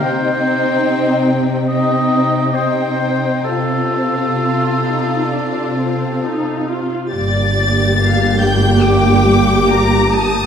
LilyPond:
<<
  \new Staff \with { instrumentName = "Violin section" } { \time 4/4 \key g \minor \tempo 4 = 69 g''2 g''4 g''4 | f''2.~ f''8. r16 | a'''4. g'''8 d'''4. ees'''8 | }
  \new Staff \with { instrumentName = "Violin section" } { \time 4/4 \key g \minor ees'2 ees'4 ees'4 | f'2.~ f'8. r16 | d''4 f''8 g''4. bes''8 a''8 | }
  \new Staff \with { instrumentName = "Oboe" } { \time 4/4 \key g \minor c''4. r8 ees''4 c''4 | a'2.~ a'8 r8 | r1 | }
  \new Staff \with { instrumentName = "Viola section" } { \time 4/4 \key g \minor c'2 c'4 c'4 | c'4 f'8 ees'8 d'8 c'8 ees'8 f'8 | <bes g'>1 | }
  \new Staff \with { instrumentName = "Cello section" } { \clef bass \time 4/4 \key g \minor c1 | c2.~ c8. r16 | g,1 | }
  \new Staff \with { instrumentName = "Double bass section" } { \clef bass \time 4/4 \key g \minor r1 | r1 | g,,1 | }
>>